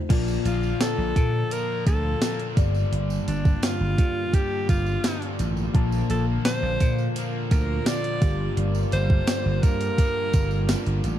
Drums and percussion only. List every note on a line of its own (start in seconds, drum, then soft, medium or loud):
0.10 kick loud
0.10 closed hi-hat medium
0.10 crash medium
0.28 tambourine soft
0.45 closed hi-hat medium
0.45 tambourine soft
0.63 tambourine soft
0.81 snare loud
0.81 closed hi-hat medium
0.81 tambourine medium
1.16 kick medium
1.16 closed hi-hat medium
1.16 tambourine soft
1.51 closed hi-hat medium
1.51 tambourine soft
1.87 kick medium
1.87 closed hi-hat medium
1.87 tambourine medium
2.22 snare loud
2.22 closed hi-hat medium
2.22 tambourine medium
2.40 closed hi-hat soft
2.57 kick loud
2.57 closed hi-hat medium
2.57 tambourine soft
2.74 tambourine soft
2.93 closed hi-hat medium
3.10 tambourine soft
3.28 closed hi-hat medium
3.28 tambourine soft
3.45 kick medium
3.45 tambourine soft
3.63 snare loud
3.63 closed hi-hat medium
3.63 tambourine medium
3.98 kick medium
3.98 closed hi-hat medium
3.98 tambourine soft
4.33 kick medium
4.33 closed hi-hat medium
4.33 tambourine soft
4.69 kick medium
4.69 closed hi-hat medium
4.69 tambourine medium
4.86 tambourine soft
5.04 snare loud
5.04 closed hi-hat medium
5.04 tambourine medium
5.22 closed hi-hat medium
5.39 closed hi-hat medium
5.39 tambourine medium
5.57 tambourine soft
5.75 kick loud
5.75 closed hi-hat medium
5.92 tambourine soft
6.10 closed hi-hat medium
6.10 tambourine soft
6.45 snare loud
6.45 closed hi-hat medium
6.45 tambourine medium
6.80 kick medium
6.80 closed hi-hat medium
6.80 tambourine soft
6.98 tambourine soft
7.16 closed hi-hat medium
7.16 tambourine soft
7.51 kick medium
7.51 closed hi-hat medium
7.51 tambourine medium
7.86 snare loud
7.86 closed hi-hat medium
7.86 tambourine medium
8.04 closed hi-hat medium
8.22 kick loud
8.22 closed hi-hat medium
8.22 tambourine soft
8.57 closed hi-hat medium
8.75 tambourine soft
8.92 closed hi-hat medium
8.92 tambourine soft
9.10 kick medium
9.27 snare loud
9.27 closed hi-hat medium
9.27 tambourine medium
9.63 kick medium
9.63 closed hi-hat medium
9.63 tambourine soft
9.80 closed hi-hat medium
9.80 tambourine soft
9.98 kick medium
9.98 closed hi-hat medium
9.98 tambourine soft
10.33 kick medium
10.33 closed hi-hat medium
10.33 tambourine medium
10.51 tambourine soft
10.69 snare loud
10.69 closed hi-hat medium
10.69 tambourine medium
10.87 closed hi-hat medium
11.04 closed hi-hat medium
11.04 tambourine soft